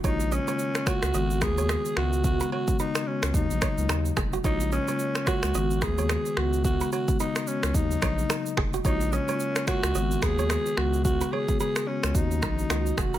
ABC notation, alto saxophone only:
X:1
M:4/4
L:1/8
Q:"Swing 16ths" 1/4=109
K:Ebm
V:1 name="Alto saxophone"
E D2 G2 A2 G | G G E D E3 z | E D2 G2 A2 G | G G E D E3 z |
E D2 G2 A2 G | G A A D E3 G |]